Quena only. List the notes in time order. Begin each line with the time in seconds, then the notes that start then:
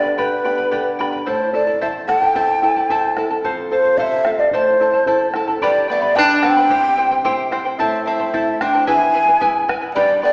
Already playing: D5
0.19 B4
1.27 C5
1.54 D5
1.82 E5
2.08 F#5
2.23 G5
3.71 C5
3.98 E5 F5
4.39 D5
4.52 C5
5.63 D5
5.90 D5
6.16 A5
6.43 G5
7.78 E5
8.06 E5
8.61 G5
8.87 G#5
9.95 D5
10.24 D5